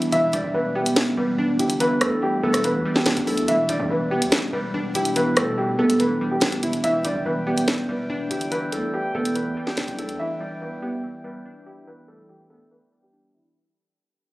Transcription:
Already playing: E3 G3 B3 D4 E4
0.02 closed hi-hat
0.12 E1 E3 E4 E5, closed hi-hat
0.33 E1 G3 D4 D5, closed hi-hat
0.44 E1
0.54 E1 E3 B3 B4
0.75 G3 B3 G4
0.86 closed hi-hat
0.96 E3, snare, closed hi-hat
1.17 E1 G3 B3 B4
1.38 E1 D4
1.59 G1 G3 E4 G4, closed hi-hat
1.70 closed hi-hat
1.80 E3 B3 B4, closed hi-hat
2.01 E2 G3 A3 A4, cross-stick, closed hi-hat
2.22 E3 G3 G4
2.43 E1 A3 B3 A4
2.54 cross-stick, closed hi-hat
2.64 E3 B3 B4, closed hi-hat
2.75 E2
2.85 G3
2.96 G3 G4, snare
3.06 E1 D4, snare, closed hi-hat
3.17 B1, closed hi-hat
3.27 A3 E4 A4, open hi-hat
3.37 E2, closed hi-hat
3.48 E1 E3 E4 E5, closed hi-hat
3.69 E1 G3 D4 D5, closed hi-hat
3.80 E2
3.90 E1 E3 B3 B4
4.11 G3 B3 G4
4.22 E2, closed hi-hat
4.32 E3, snare, closed hi-hat
4.37 E1
4.53 E1 G3 B3 B4
4.74 E1 D4
4.95 E1 G3 E4 G4, closed hi-hat
5.05 closed hi-hat
5.16 E3 B3 B4, closed hi-hat
5.37 B2 G3 A3 A4, cross-stick, closed hi-hat
5.58 E3 G3 G4
5.79 E1 A3 B3 A4
5.90 closed hi-hat
6.00 E3 B3 B4, closed hi-hat
6.21 G3
6.31 G3 G4
6.41 E1 D4, snare, closed hi-hat
6.52 E1, closed hi-hat
6.63 E3 E4, closed hi-hat
6.73 closed hi-hat
6.84 E1 E3 E4 B4 D5 E5 G5, closed hi-hat
7.05 E1 G3 D4 D5, closed hi-hat
7.15 E1
7.25 E1 E3 B3 B4
7.47 G3 B3 G4
7.58 closed hi-hat
7.68 E3, snare, closed hi-hat
7.89 E1 G3 B3 B4
8.10 E1 D4
8.30 G1 G3 E4 G4, closed hi-hat
8.41 closed hi-hat
8.52 E3 B3 B4, closed hi-hat
8.72 E2 G3 A3 A4, closed hi-hat
8.94 E3 G3 G4
9.15 E1 A3 B3 A4
9.25 closed hi-hat
9.35 E3 B3 B4, closed hi-hat
9.46 E2
9.57 G3
9.67 G3 G4, snare
9.77 E1 D4, snare, closed hi-hat
9.88 B1, closed hi-hat
9.98 A3 E4 A4, closed hi-hat
10.09 E2, closed hi-hat
10.19 E3 E4 B4 E5
10.40 G3 D4 D5
10.61 E3 B3 B4
10.82 G3 B3 G4
11.03 E3
11.24 G3 B3 B4
11.45 D4
11.66 G3 E4 G4
11.87 E3 B3 B4
12.08 G3 A3 A4
12.29 E3 G3 G4
12.50 A3 B3 A4
12.71 E3 B3 B4
12.92 G3
13.03 G3 G4
13.13 D4
13.34 E3 E4

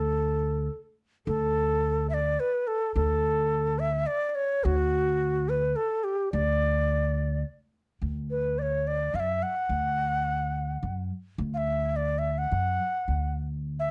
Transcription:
Already playing: D2 A4
1.27 D2 A4
2.09 E5
2.14 D5
2.40 B4
2.67 A4
2.95 D2 A4
3.79 E5
4.06 D5
4.29 D5
4.35 C#5
4.64 D2 F#4
5.49 B4
5.76 A4
6.04 G4
6.32 D2 D5
8.02 D2
8.30 B4
8.59 C#5 D5
8.87 D5
9.14 F#2 F5
9.20 E5
9.42 F#5
9.69 D2
10.83 F#2
11.38 D2
11.54 E5 F5
11.96 D5
12.18 E5
12.38 F#5
12.52 F#2
13.08 D2
13.79 E5

